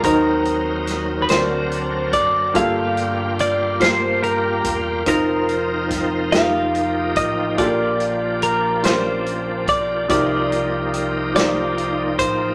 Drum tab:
HH |xxxxxx|xxxxxx|xxxxxx|xxxxxx|
SD |--oo--|---o--|--oo--|---o--|
BD |o----o|o----o|o-o--o|o----o|

HH |xxxxxx|
SD |---o--|
BD |o----o|